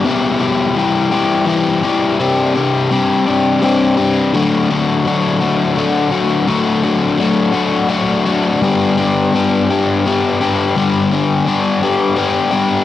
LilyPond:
\new Staff \with { instrumentName = "Overdriven electric guitar" } { \time 6/8 \key g \major \tempo 4. = 56 <e, b, e g e' g'>8 <e g e' g'>8 <e g e' g'>8 <e g e' g'>8 <e g e' g'>8 <e g e' g'>8 | <c g c' d' g'>8 <c' d' g'>8 <g c' d' g'>8 <c' d' g'>8 <g c' d' g'>8 <c' d' g'>8 | <d fis a d' fis'>8 <a d' fis'>8 <fis a d' fis'>8 <a d' fis'>8 <fis a d' fis'>8 <a d' fis'>8 | <d fis a d' fis'>8 <a d' fis'>8 <fis a d' fis'>8 <a d' fis'>8 <fis a d' fis'>8 <a d' fis'>8 |
<g, d g b d' g'>8 <g b d' g'>8 <g b d' g'>8 <g b d' g'>8 <g b d' g'>8 <g b d' g'>8 | <g, d g b d' g'>8 <g b d' g'>8 <g b d' g'>8 <g b d' g'>8 <g b d' g'>8 <g b d' g'>8 | }